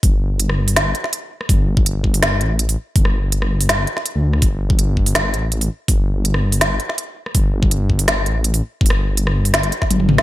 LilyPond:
<<
  \new Staff \with { instrumentName = "Detuned saw bass" } { \clef bass \time 4/4 \key c \dorian \tempo 4 = 164 g,,2~ g,,8 r4. | g,,2~ g,,8 a,,4 r8 | g,,2~ g,,8 r8. d,8. | g,,2~ g,,8 a,,4 r8 |
g,,2~ g,,8 r4. | g,,2~ g,,8 a,,4 r8 | g,,2~ g,,8 r8 g,,8 a,,16 r16 | }
  \new DrumStaff \with { instrumentName = "Drums" } \drummode { \time 4/4 <hho bd>4 hh16 ss8 hho16 <hh sn>8 hh16 sn16 hh8. ss16 | <hho bd>8. bd16 hh8 bd16 hho16 <hh ss sn>8 hh8 hh16 hho8. | <hho bd>16 ss8. hh16 ss8 hho16 <hh sn>8 hh16 sn16 hh8. ss16 | <hho bd>8. bd16 hh8 bd16 hho16 <hh ss sn>8 hh8 hh16 hho8. |
<hho bd>4 hh16 ss8 hho16 <hh sn>8 hh16 sn16 hh8. ss16 | <hho bd>8. bd16 hh8 bd16 hho16 <hh ss sn>8 hh8 hh16 hho8. | bd32 hho32 ss8. hh16 ss8 hho16 <hh sn>16 hh16 hh16 <bd sn>16 <hh tommh>16 tommh16 toml16 <ss sn>16 | }
>>